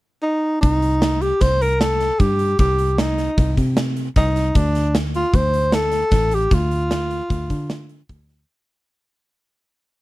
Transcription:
0.23 tenor saxophone D#4
0.61 fingered electric bass C2, tenor saxophone D#4, kick, closed hi-hat
0.82 closed hi-hat
1.02 snare, closed hi-hat
1.21 tenor saxophone G4, closed hi-hat
1.41 fingered electric bass C2, tenor saxophone C5, kick, snare, closed hi-hat
1.61 tenor saxophone A#4, closed hi-hat
1.80 tenor saxophone A4, snare, closed hi-hat
2.01 snare, closed hi-hat
2.19 fingered electric bass G2, tenor saxophone G4, kick, closed hi-hat
2.39 closed hi-hat
2.59 fingered electric bass C2, tenor saxophone G4, kick, closed hi-hat
2.78 closed hi-hat
2.98 tenor saxophone D#4, snare, closed hi-hat
3.18 snare, closed hi-hat
3.38 fingered electric bass C2, kick, closed hi-hat
3.57 fingered electric bass C3, kick, closed hi-hat
3.77 snare, closed hi-hat
3.97 closed hi-hat
4.16 fingered electric bass C2, tenor saxophone D#4, kick, snare, closed hi-hat
4.36 snare, closed hi-hat
4.55 fingered electric bass D2, tenor saxophone D4, kick, closed hi-hat
4.75 snare, closed hi-hat
4.95 snare, closed hi-hat
5.14 tenor saxophone F4, closed hi-hat
5.34 fingered electric bass D2, tenor saxophone C5, kick, closed hi-hat
5.53 closed hi-hat
5.72 tenor saxophone A4, snare, closed hi-hat
5.92 snare, closed hi-hat
6.11 fingered electric bass A1, kick, snare, closed hi-hat
6.31 tenor saxophone G4, closed hi-hat
6.51 fingered electric bass D2, tenor saxophone F4, kick, closed hi-hat
6.71 closed hi-hat
6.91 snare, closed hi-hat
7.11 closed hi-hat
7.30 fingered electric bass D2, kick, closed hi-hat
7.50 fingered electric bass D3, kick, closed hi-hat
7.70 snare, closed hi-hat
7.89 closed hi-hat
8.09 fingered electric bass D2, kick, closed hi-hat
8.29 snare, closed hi-hat

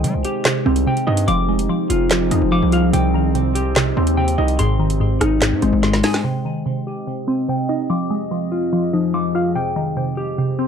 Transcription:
Already playing: ambient pad C3 C4 D#4 G4, synth pluck D#3, clean electric guitar G5
0.04 synth pluck C3, 808-style bass G3, closed hi-hat
0.14 808-style bass C2
0.25 clean electric guitar G4, closed hi-hat
0.45 synth pluck C3, snare, clap, closed hi-hat
0.65 808-style bass C2, clean electric guitar C4, synth pluck C4
0.76 closed hi-hat
0.87 synth pluck C3, clean electric guitar G5
0.97 closed hi-hat
1.07 808-style bass G2, synth pluck D#4, clean electric guitar D#5
1.17 closed hi-hat
1.28 808-style bass F1, ambient pad F3 C4 G#4, synth pluck F3, clean electric guitar D6, closed hi-hat
1.49 synth pluck G#3
1.59 closed hi-hat
1.69 synth pluck F3
1.90 808-style bass F1, clean electric guitar F4, closed hi-hat
2.11 synth pluck F3, snare, clap, closed hi-hat
2.31 808-style bass F2, clean electric guitar F3, synth pluck D#4, closed hi-hat
2.42 808-style bass F1
2.52 synth pluck F3, clean electric guitar D6
2.62 808-style bass C2
2.72 synth pluck F4, clean electric guitar F5, closed hi-hat
2.93 808-style bass C2, ambient pad C3 G4, synth pluck C3, clean electric guitar G5, closed hi-hat
3.14 synth pluck D#3
3.35 synth pluck C3, closed hi-hat
3.55 clean electric guitar G4, closed hi-hat
3.76 synth pluck C3, snare, clap, closed hi-hat
3.97 808-style bass D#2, clean electric guitar C4, synth pluck C4
4.07 closed hi-hat
4.17 synth pluck C3, clean electric guitar G5
4.28 closed hi-hat
4.38 808-style bass C2, synth pluck D#4, clean electric guitar D#5
4.48 closed hi-hat
4.59 808-style bass G#1, synth pluck G#2, ambient pad G#3 G#4 C5 D#5, clean electric guitar C6, closed hi-hat
4.80 synth pluck D#3
4.90 closed hi-hat
5.00 synth pluck G#2
5.20 808-style bass G#1, clean electric guitar D#4, cross-stick, closed hi-hat
5.42 synth pluck G#2, snare, clap, closed hi-hat
5.52 808-style bass G#2
5.62 808-style bass G#1, clean electric guitar G#3, synth pluck C4, closed hi-hat
5.73 808-style bass G#1
5.83 synth pluck G#2, clean electric guitar C6, snare
5.93 snare
6.03 synth pluck D#4, clean electric guitar G#5, snare, open hi-hat
6.14 snare
6.24 synth pluck C3, ambient pad C3 C4 G4 D#5, clean electric guitar G5
6.45 synth pluck D#3
6.66 synth pluck C3
6.87 clean electric guitar G4
7.07 synth pluck C3
7.27 clean electric guitar C4, synth pluck C4
7.49 synth pluck C3, clean electric guitar G5
7.69 synth pluck D#4, clean electric guitar D#5
7.90 ambient pad F2 F3 G#4, synth pluck F3, clean electric guitar D6
8.10 synth pluck G#3
8.31 synth pluck F3
8.52 clean electric guitar F4
8.73 synth pluck F3
8.93 clean electric guitar F3, synth pluck D#4
9.14 synth pluck F3, clean electric guitar D6
9.35 synth pluck F4, clean electric guitar F5
9.55 ambient pad C3 G3 D#4 C5, synth pluck C3, clean electric guitar G5
9.76 synth pluck D#3
9.97 synth pluck C3
10.17 clean electric guitar G4
10.38 synth pluck C3
10.59 clean electric guitar C4, synth pluck C4

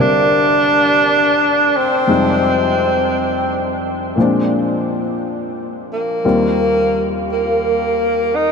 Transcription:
Already playing: grand piano C2 C3 D#3 A#3 D4
0.00 grand piano D3 G3 C4, tenor saxophone D4
1.77 tenor saxophone C4
2.07 grand piano F2 C3 G3 G#3 D#4
4.16 grand piano A#2 F3 G#3
4.20 grand piano C4 D4
5.93 tenor saxophone A#3
6.24 grand piano D#2 D#3 G3 C4 F4
7.32 tenor saxophone A#3
8.35 tenor saxophone D#4

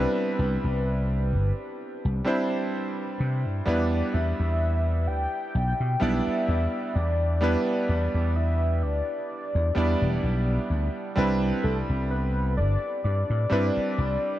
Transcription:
Already playing: electric grand piano G3 C4 D4 E4 B4, soft synth lead B4
0.39 slap bass C2
0.64 slap bass C2
1.33 slap bass G1
2.05 slap bass C2
2.25 electric grand piano G3 C4 D4 E4 C5
3.20 slap bass C3
3.45 slap bass G2
3.65 slap bass E2, electric grand piano G3 B3 D4 E4 B4, soft synth lead D5
4.13 slap bass E2, soft synth lead E5
4.40 slap bass E2
5.07 slap bass D2, soft synth lead G5
5.55 slap bass B1
5.80 slap bass B2
6.00 slap bass B1, electric grand piano G3 B3 D4 E4 D5, soft synth lead E5
6.27 muted slap bass stroke
6.48 slap bass E2
6.95 slap bass E2, soft synth lead D5
7.41 electric grand piano G3 B3 D4 E4 B4
7.89 slap bass E2, soft synth lead D5
8.14 slap bass E2
8.36 soft synth lead E5
8.83 slap bass D2, soft synth lead D5
9.55 slap bass E2
9.75 slap bass E2, electric grand piano G3 B3 D4 E4 D5
10.02 slap bass E1
10.23 slap bass B1
10.70 slap bass D2
11.16 slap bass C2, electric grand piano G3 C4 D4 E4 B4
11.63 slap bass C2, soft synth lead A4
11.89 slap bass C2
12.10 soft synth lead B4
12.57 slap bass G1, soft synth lead D5
13.04 slap bass G2, soft synth lead D5
13.30 slap bass A2
13.50 slap bass G2, electric grand piano G3 C4 D4 E4 B4
13.77 muted slap bass stroke
13.98 slap bass C2

